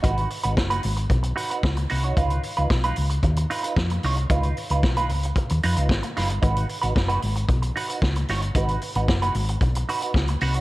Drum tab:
HH |xxox-xoxxxox-xox|xxox-xoxxxox-xox|xxox-xoxxxox-xox|xxox-xoxxxox-xox|
SD |----o-------o---|----o-------o---|----o-------o-o-|----o-------o-o-|
BD |o---o---o---o---|o---o---o---o---|o---o---o---o---|o---o---o---o---|

HH |xxox-xoxxxox-xox|
SD |----o-------o---|
BD |o---o---o---o---|